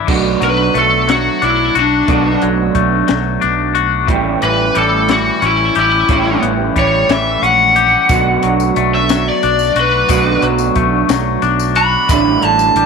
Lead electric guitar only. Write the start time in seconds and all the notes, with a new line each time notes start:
0.44 B4
0.78 A4
1.11 F#4
1.44 E4
1.79 D4
4.44 B4
4.77 A4
5.12 F#4
5.45 E4
5.79 E4
6.79 C#5
7.11 E5
7.44 F#5
8.95 E5
9.28 D5
9.80 B4
11.77 B5
12.11 B5
12.45 A5